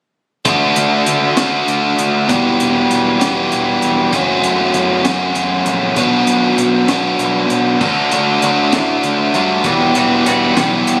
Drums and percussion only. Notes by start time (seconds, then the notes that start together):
0.45 kick, closed hi-hat
0.76 closed hi-hat
1.06 closed hi-hat
1.37 snare, closed hi-hat
1.68 closed hi-hat
1.99 closed hi-hat
2.29 kick, closed hi-hat
2.60 closed hi-hat
2.91 closed hi-hat
3.21 snare, closed hi-hat
3.52 closed hi-hat
3.82 closed hi-hat
4.13 kick, closed hi-hat
4.44 closed hi-hat
4.74 closed hi-hat
5.05 snare, closed hi-hat
5.35 closed hi-hat
5.66 closed hi-hat
5.96 kick, closed hi-hat
6.27 closed hi-hat
6.58 closed hi-hat
6.88 snare, closed hi-hat
7.19 closed hi-hat
7.50 closed hi-hat
7.81 kick, crash
8.12 closed hi-hat
8.42 closed hi-hat
8.73 kick, snare, closed hi-hat
9.03 closed hi-hat
9.34 closed hi-hat
9.64 kick, closed hi-hat
9.95 closed hi-hat
10.26 closed hi-hat
10.57 kick, snare, closed hi-hat
10.87 closed hi-hat